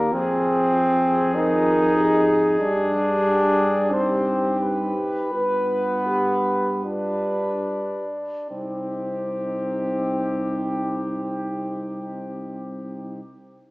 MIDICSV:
0, 0, Header, 1, 6, 480
1, 0, Start_track
1, 0, Key_signature, -3, "minor"
1, 0, Tempo, 1209677
1, 528, Tempo, 1263158
1, 1008, Time_signature, 4, 2, 24, 8
1, 1008, Tempo, 1310044
1, 1488, Tempo, 1405152
1, 1968, Tempo, 1530612
1, 2448, Tempo, 1662050
1, 2928, Tempo, 1578947
1, 4511, End_track
2, 0, Start_track
2, 0, Title_t, "Trumpet section"
2, 0, Program_c, 0, 61
2, 0, Note_on_c, 0, 70, 67
2, 49, Note_off_c, 0, 70, 0
2, 52, Note_on_c, 0, 68, 70
2, 1490, Note_off_c, 0, 68, 0
2, 1492, Note_on_c, 0, 72, 66
2, 1724, Note_on_c, 0, 71, 63
2, 1726, Note_off_c, 0, 72, 0
2, 2400, Note_off_c, 0, 71, 0
2, 2452, Note_on_c, 0, 71, 51
2, 2795, Note_off_c, 0, 71, 0
2, 2932, Note_on_c, 0, 67, 47
2, 4357, Note_off_c, 0, 67, 0
2, 4511, End_track
3, 0, Start_track
3, 0, Title_t, "French horn section"
3, 0, Program_c, 1, 60
3, 0, Note_on_c, 1, 70, 74
3, 50, Note_off_c, 1, 70, 0
3, 57, Note_on_c, 1, 68, 68
3, 533, Note_off_c, 1, 68, 0
3, 536, Note_on_c, 1, 70, 79
3, 766, Note_off_c, 1, 70, 0
3, 771, Note_on_c, 1, 68, 73
3, 1005, Note_off_c, 1, 68, 0
3, 1018, Note_on_c, 1, 67, 77
3, 1972, Note_off_c, 1, 67, 0
3, 1973, Note_on_c, 1, 71, 66
3, 2205, Note_off_c, 1, 71, 0
3, 2209, Note_on_c, 1, 67, 53
3, 2448, Note_on_c, 1, 65, 44
3, 2451, Note_off_c, 1, 67, 0
3, 2688, Note_off_c, 1, 65, 0
3, 2932, Note_on_c, 1, 63, 49
3, 4357, Note_off_c, 1, 63, 0
3, 4511, End_track
4, 0, Start_track
4, 0, Title_t, "Euphonium"
4, 0, Program_c, 2, 58
4, 0, Note_on_c, 2, 67, 78
4, 47, Note_on_c, 2, 65, 67
4, 53, Note_off_c, 2, 67, 0
4, 528, Note_off_c, 2, 65, 0
4, 531, Note_on_c, 2, 65, 59
4, 765, Note_on_c, 2, 67, 68
4, 770, Note_off_c, 2, 65, 0
4, 923, Note_off_c, 2, 67, 0
4, 1009, Note_on_c, 2, 67, 63
4, 1489, Note_on_c, 2, 63, 60
4, 1494, Note_off_c, 2, 67, 0
4, 1971, Note_on_c, 2, 65, 59
4, 1976, Note_off_c, 2, 63, 0
4, 2203, Note_on_c, 2, 67, 57
4, 2208, Note_off_c, 2, 65, 0
4, 2448, Note_off_c, 2, 67, 0
4, 2450, Note_on_c, 2, 67, 44
4, 2794, Note_off_c, 2, 67, 0
4, 2931, Note_on_c, 2, 63, 47
4, 4357, Note_off_c, 2, 63, 0
4, 4511, End_track
5, 0, Start_track
5, 0, Title_t, "Trombone"
5, 0, Program_c, 3, 57
5, 0, Note_on_c, 3, 58, 82
5, 51, Note_on_c, 3, 60, 99
5, 57, Note_off_c, 3, 58, 0
5, 534, Note_on_c, 3, 63, 95
5, 540, Note_off_c, 3, 60, 0
5, 1011, Note_off_c, 3, 63, 0
5, 1014, Note_on_c, 3, 62, 100
5, 1492, Note_on_c, 3, 60, 81
5, 1497, Note_off_c, 3, 62, 0
5, 1853, Note_off_c, 3, 60, 0
5, 1972, Note_on_c, 3, 59, 82
5, 2438, Note_off_c, 3, 59, 0
5, 2451, Note_on_c, 3, 62, 66
5, 2920, Note_off_c, 3, 62, 0
5, 2928, Note_on_c, 3, 60, 58
5, 4354, Note_off_c, 3, 60, 0
5, 4511, End_track
6, 0, Start_track
6, 0, Title_t, "Tuba"
6, 0, Program_c, 4, 58
6, 0, Note_on_c, 4, 39, 75
6, 47, Note_on_c, 4, 41, 72
6, 53, Note_off_c, 4, 39, 0
6, 1008, Note_off_c, 4, 41, 0
6, 1014, Note_on_c, 4, 43, 73
6, 1839, Note_off_c, 4, 43, 0
6, 1970, Note_on_c, 4, 43, 54
6, 2790, Note_off_c, 4, 43, 0
6, 2931, Note_on_c, 4, 36, 52
6, 4356, Note_off_c, 4, 36, 0
6, 4511, End_track
0, 0, End_of_file